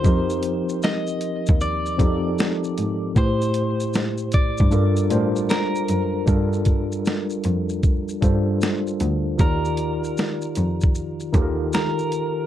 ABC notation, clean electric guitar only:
X:1
M:4/4
L:1/8
Q:"Swing 16ths" 1/4=77
K:Gm
V:1 name="Clean electric guitar"
c2 e2 d4 | c3 d3 B2 | z8 | B4 z2 B2 |]